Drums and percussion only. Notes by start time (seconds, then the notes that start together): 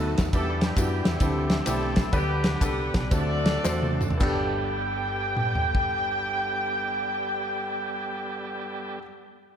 0.18 kick, snare, ride, tambourine
0.33 kick, ride, tambourine
0.61 snare, ride, tambourine
0.76 kick, clap, ride, tambourine
1.05 snare, ride, tambourine
1.20 kick, ride, tambourine
1.50 snare, ride, tambourine
1.66 clap, ride, tambourine
1.96 kick, snare, ride, tambourine
2.13 kick, ride, tambourine
2.44 snare, ride, tambourine
2.61 kick, clap, ride, tambourine
2.94 kick, snare, ride, tambourine
3.11 kick, ride, tambourine
3.46 snare, ride, tambourine
3.64 snare, clap, tambourine
3.83 high tom
4.01 mid tom, tambourine
4.10 floor tom
4.20 kick, clap, crash
5.37 mid tom
5.55 floor tom
5.75 kick